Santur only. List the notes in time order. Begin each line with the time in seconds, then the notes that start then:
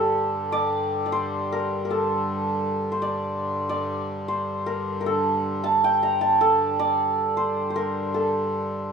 Already playing: G4 A4 C5
0.52 D5
1.06 D5
1.12 C5
1.52 A#4
1.85 A#4
1.91 A4
2.92 C5
3.02 D5
3.69 D5
4.28 C5
4.66 A#4
5.01 A#4
5.06 A4
5.64 A5
5.84 G5
6.03 A#5
6.21 A5
6.41 A4
6.79 D5
7.37 C5
7.70 C5
7.76 A#4
8.14 A4